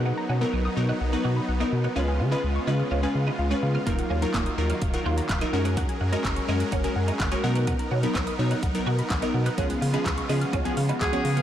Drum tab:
HH |----------------|----------------|xx-xxx-xxx-xxx-x|xx-xxx-xxx-xxx-x|
CP |----------------|----------------|----x-------x---|----x-------x---|
SD |----------------|----------------|----o-------o---|----o-------o---|
BD |----------------|----------------|o---o---o---o---|o---o---o---o---|

HH |xx-xxx-xxx-xxx-x|xxoxxxoxxxoxxxox|
CP |----x-------x---|----x-------x---|
SD |----o-------o---|----o-------o---|
BD |o---o---o---o---|o---o---o---o---|